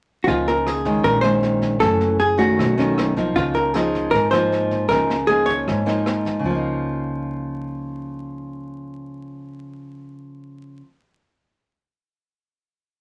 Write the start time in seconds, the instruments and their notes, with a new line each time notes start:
0.24 upright bass C#2, nylon-string guitar C#3 F3 A#3 D#4, hollow-body jazz guitar F4 F#4, kick, snare
0.48 hollow-body jazz guitar A#4, snare
0.67 hollow-body jazz guitar G#4, cross-stick, snare
0.85 nylon-string guitar D#3 G#3 C#4, kick, snare
1.04 upright bass A#1, nylon-string guitar A#2, hollow-body jazz guitar A#4, kick, snare
1.21 nylon-string guitar D#3 G#3 C#4, hollow-body jazz guitar C5, cross-stick, snare
1.43 snare
1.62 kick, snare
1.80 upright bass F#1, nylon-string guitar F#2 E3 A3 C#4, hollow-body jazz guitar A4, kick, cross-stick, snare
2.01 snare
2.20 hollow-body jazz guitar G#4, snare
2.37 nylon-string guitar D#3 A3 C#4, hollow-body jazz guitar F#4, kick, snare
2.57 upright bass B1, nylon-string guitar B2, kick, cross-stick, snare
2.77 nylon-string guitar D#3 A3 C#4, snare
2.98 cross-stick, snare
3.16 nylon-string guitar F3 A#3 D#4, kick, snare
3.36 upright bass C#2, nylon-string guitar C#3, hollow-body jazz guitar F4, kick, snare
3.55 hollow-body jazz guitar A#4, snare
3.74 nylon-string guitar F3 A#3 D#4, hollow-body jazz guitar G#4, cross-stick, snare
3.94 kick, snare
4.11 upright bass G#1, nylon-string guitar G#2, hollow-body jazz guitar A#4, kick, snare
4.31 nylon-string guitar F3 A#3 D#4, hollow-body jazz guitar C5, cross-stick, snare
4.52 snare
4.71 kick, snare
4.89 upright bass C#2, nylon-string guitar C#3 F3 A#3 D#4, hollow-body jazz guitar A#4, kick, cross-stick, snare
5.10 snare
5.27 nylon-string guitar F3 A#3 D#4, hollow-body jazz guitar G#4, snare
5.46 hollow-body jazz guitar C#5, kick, snare
5.67 upright bass G#1, nylon-string guitar G#2, kick, cross-stick, snare
5.86 nylon-string guitar F3 A#3 D#4, snare
6.06 cross-stick, snare
6.25 kick, snare
6.39 nylon-string guitar C#3
6.44 upright bass C#2, nylon-string guitar F3
6.50 nylon-string guitar A#3
6.55 nylon-string guitar D#4